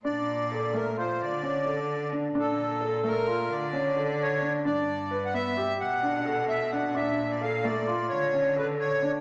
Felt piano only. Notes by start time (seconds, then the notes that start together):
0.05 D4
0.52 A4
0.74 A3
0.97 F4
1.43 C#4
1.65 A4
2.12 D4
2.35 D4
2.81 A4
3.04 A3
3.27 F4
3.73 C#4
3.96 A4
4.42 D4
4.65 D4
5.11 B4
5.34 B3
5.57 G4
6.03 D4
6.25 A4
6.73 D4
6.95 D4
7.41 A4
7.64 A3
7.87 F4
8.33 C#4
8.56 A4
9.02 D4